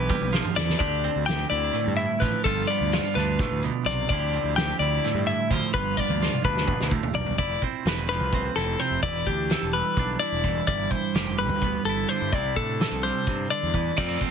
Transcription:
Already playing: B1 E3 D4 E4 G4 B4
0.09 G3, kick
0.21 B1, high tom
0.33 F3, snare
0.45 mid tom
0.56 E2 E3 D5, snare
0.69 snare
0.79 D2 D3 G4 D5, kick, closed hi-hat, splash
1.04 C4, closed hi-hat
1.16 D2
1.26 G4 G5, snare, closed hi-hat
1.50 D2 E4 D5, closed hi-hat
1.73 A2, closed hi-hat
1.87 G2
1.97 E4 E5, closed hi-hat
2.20 A1 F3 B4, kick, snare, closed hi-hat
2.44 G1 G2 F4 A4, kick, closed hi-hat
2.67 B3 D5, closed hi-hat
2.81 D2
2.92 F4, snare, closed hi-hat
3.15 D2 D4 B4, snare, closed hi-hat
3.39 A2, kick, snare, closed hi-hat
3.51 D2
3.63 B2, closed hi-hat
3.85 B1 C3 D5, snare, closed hi-hat
4.09 D2 D3 F3 C4 D5, kick, closed hi-hat
4.14 E4 G4
4.33 C4, closed hi-hat
4.44 D2
4.56 G4 G5, snare, closed hi-hat
4.79 D2 E4 D5, closed hi-hat
5.04 A2, snare, closed hi-hat
5.14 G2
5.27 E4 E5, closed hi-hat
5.50 D2 F3 C5, kick, closed hi-hat
5.74 G1 G2 F4 B4, kick, closed hi-hat
5.97 B3 D5, kick
6.09 D2, high tom
6.22 F4, snare
6.33 mid tom
6.44 D2 D4 B4, kick
6.57 snare
6.67 B2, kick, mid tom
6.80 D2, snare
6.91 A2, kick
7.03 floor tom
7.14 B1 G2 D5, floor tom
7.26 floor tom
7.38 F1 E4 D5, kick, closed hi-hat
7.62 C4, kick, closed hi-hat
7.85 E1 B4, snare, closed hi-hat
8.09 F3 B4, snare, closed hi-hat
8.20 C2
8.33 C4, kick, closed hi-hat
8.56 F1 E4 A4, snare, closed hi-hat
8.80 C3 C5, closed hi-hat
8.91 F1
9.02 E1 E3 E4 D5, kick, closed hi-hat
9.26 D2 D4 G4, kick, closed hi-hat
9.50 A4, snare, closed hi-hat
9.62 E1
9.73 G3 B4, closed hi-hat
9.97 B1 D4, kick, closed hi-hat
10.19 E4 D5, closed hi-hat
10.32 E1
10.44 E3, kick, closed hi-hat
10.67 G1 G2 E4 D5, kick, closed hi-hat
10.91 C5, kick, closed hi-hat
11.14 F1 G4, snare, closed hi-hat
11.38 G3 B4, closed hi-hat
11.49 D2
11.62 B3, kick, closed hi-hat
11.84 G1 A4, closed hi-hat
11.89 E4
12.09 D3 C5, closed hi-hat
12.21 G2
12.33 C2 C3 E4 D5, kick, closed hi-hat
12.56 A2 D4 A4, kick, closed hi-hat
12.80 A4, snare, closed hi-hat
12.91 C2
13.03 G3 C5, snare, closed hi-hat
13.27 G2 C3, kick, closed hi-hat
13.50 D3 D5, closed hi-hat
13.63 E2
13.73 E3, kick, closed hi-hat
13.97 F2 F3 A3 C4 F4 A4 D5, kick, closed hi-hat
14.21 C4, kick, closed hi-hat

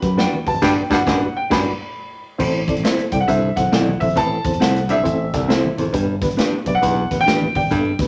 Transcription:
Already playing: B5
0.01 F#2 F#4 G4 B4, kick, snare, closed hi-hat
0.17 D4 F#4 G4 B4 G5, snare, closed hi-hat, muted conga
0.33 high conga
0.46 F#1 F#4 G4 B4 A5, kick, open hi-hat, low conga
0.54 G#1, high conga
0.62 G1 G2 D4 F#4 G4 B4 G5, kick, snare, crash
0.83 G5
0.90 G1 G2 D4 F#4 G4 B4 F#5, kick, snare
1.06 G1 F#2 D4 F#4 G4 B4, kick, snare
1.37 G5
1.50 G1 F#2 D4 F#4 G4 B4 D5 B5, kick, snare, crash
2.38 A1 A2 C4 E4 A4 C5, kick, crash, low conga
2.67 C4 E4 A4 D5, kick, closed hi-hat, high conga
2.76 A1, closed hi-hat
2.84 C4 E4 A4 C5, snare, closed hi-hat
2.98 muted fingered electric bass stroke, closed hi-hat, muted conga
3.12 C2 C4 E4 A4 D5 G5, kick, closed hi-hat, low conga
3.20 F#5
3.28 C2 G2 C4 E4 A4 C5 E5, kick, closed hi-hat, muted conga
3.42 muted conga
3.56 B1 C4 E4 A4 C5 F#5, kick, snare, closed hi-hat
3.64 high conga
3.72 B1 C4 E4 A4 D5, snare, closed hi-hat
3.88 muted conga, high conga
4.00 A#1 C4 E4 A4 C5 E5, kick, open hi-hat, low conga
4.08 high conga
4.15 A1 A2 C4 E4 A4 B4 A5, kick, closed hi-hat, low conga
4.30 muted conga
4.44 E2 C4 E4 A4 C5, kick, closed hi-hat, high conga
4.53 closed hi-hat
4.60 C2 C4 E4 A4 C5 F#5, snare, closed hi-hat
4.76 closed hi-hat
4.88 G2 C4 E4 A4 D5 E5, closed hi-hat, low conga
4.98 C2
5.04 A1 C4 E4 A4 C5, kick, closed hi-hat, muted conga
5.32 C2 C4 E4 A4 D5, kick, snare, closed hi-hat
5.41 high conga
5.48 C4 E4 A4 C5, snare, closed hi-hat, muted conga
5.65 high conga
5.77 G#1 E2 C4 E4 A4 C5, closed hi-hat, low conga
5.86 high conga
5.93 G1 G2 B3 D4 G4 B4, kick, closed hi-hat, low conga
6.21 B3 D4 G4 B4, kick, snare, closed hi-hat, high conga
6.29 G1, closed hi-hat
6.37 B3 D4 G4 B4, snare, closed hi-hat, muted conga
6.52 muted fingered electric bass stroke, muted conga
6.65 B1 B3 D4 G4 B4 D5, kick, closed hi-hat, low conga
6.75 F#5
6.82 B1 E2 B3 D4 G4 B4, kick, closed hi-hat, muted conga
6.96 muted conga
7.10 A1 B3 D4 G4 B4, kick, snare, closed hi-hat
7.19 G5, high conga
7.26 A1 B3 D4 G4 B4, snare, closed hi-hat, muted conga
7.42 muted conga, high conga
7.55 G#1 B3 D4 G4 D5 G5, kick, open hi-hat, low conga
7.63 high conga
7.71 G1 G2 B3 D4 G4 A4, kick, closed hi-hat, muted conga, low conga
7.85 muted conga
7.98 D2 B3 D4 G4 B4, kick, snare, closed hi-hat, high conga

